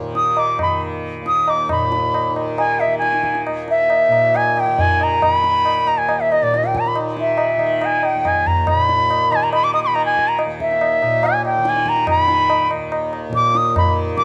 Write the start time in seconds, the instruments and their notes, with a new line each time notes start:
Already playing: tanpura D#2 A#2 D#3
0.02 tanpura D#3
0.15 bansuri D#6, tabla te
0.37 bansuri D6, tabla na
0.59 bansuri B5, tabla na, tabla ge
0.63 tanpura D#3
1.22 tanpura D#2
1.26 bansuri D#6, tabla te
1.48 bansuri D6, tabla na
1.69 tanpura A#2, bansuri B5, tabla na, tabla ge
1.92 tabla te
2.14 tabla na
2.30 tanpura D#3
2.36 tabla na
2.58 bansuri G#5, tabla na
2.80 bansuri E5, tabla na
2.87 tanpura D#3
2.98 bansuri G#5, tabla te
3.12 tabla te
3.23 tabla ke
3.35 tabla te
3.47 tanpura D#2, tabla na
3.68 bansuri E5, tabla te
3.90 tabla na
4.08 tanpura A#2
4.12 tabla na
4.35 bansuri G#5, tabla na
4.57 bansuri G5, tabla na
4.67 tanpura D#3
4.79 bansuri G#5, tabla tin, tabla ge
5.01 bansuri A#5, tabla na
5.22 bansuri A#5, tabla na, tabla ge
5.27 tanpura D#3
5.34 bansuri B5
5.44 tabla te
5.66 tabla na
5.84 tanpura D#2, bansuri A#5, tabla na
5.98 bansuri G#5
6.09 tabla na
6.20 bansuri E5
6.32 bansuri D#5, tabla na
6.42 tanpura A#2, bansuri D5
6.54 bansuri D#5, tabla te
6.64 bansuri G5, tabla te
6.75 bansuri A#5, tabla ke
6.86 bansuri B5, tabla te
6.96 tanpura D#3, tabla na
7.17 bansuri E5, tabla te
7.38 tabla na
7.57 tanpura D#3, tabla na
7.81 bansuri G#5, tabla na
8.03 bansuri G5, tabla na
8.15 tanpura D#2
8.25 bansuri G#5, tabla na, tabla ge
8.47 bansuri A#5, tabla ge
8.67 bansuri A#5, tabla na, tabla ge
8.72 tanpura A#2
8.80 bansuri B5
8.89 tabla te
9.10 tabla na
9.30 tanpura D#3, bansuri G#5, tabla na
9.43 bansuri A#5
9.53 bansuri B5, tabla na
9.64 bansuri D6
9.74 bansuri D#6, tabla na
9.83 bansuri B5
9.87 tanpura D#3
9.95 bansuri A#5, tabla na
10.06 bansuri G#5
10.18 tabla ke
10.28 bansuri A#5
10.39 tabla na
10.46 tanpura D#2
10.60 bansuri E5, tabla ke
10.71 tabla te
10.81 tabla na
11.02 tanpura A#2, tabla na
11.23 bansuri G#5, tabla na
11.45 bansuri G5, tabla na
11.58 tanpura D#3
11.65 bansuri G#5, tabla te
11.76 tabla te
11.86 bansuri A#5, tabla ke
11.96 tabla te
12.07 bansuri B5, tabla na, tabla ge
12.15 tanpura D#3
12.28 tabla te
12.50 tabla na
12.71 tanpura D#2, tabla na
12.92 tabla na
13.13 tabla na
13.29 tanpura A#2
13.33 bansuri D6, tabla ke
13.55 bansuri D#6, tabla te
13.76 bansuri B5, tabla na, tabla ge
13.85 tanpura D#3
14.17 bansuri D6, tabla ke